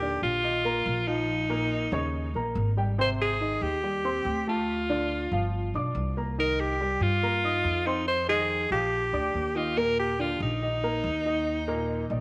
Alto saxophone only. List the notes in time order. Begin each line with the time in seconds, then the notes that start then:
Already playing: G4
0.23 F4
1.08 D#4
3.01 C5
3.22 G#4
3.63 G4
4.49 F4
6.40 A#4
6.60 G4
7.02 F4
7.87 D#4
8.08 C5
8.29 G#4
8.72 G4
9.56 F4
9.78 A#4
10.00 G4
10.21 F4
10.42 D#4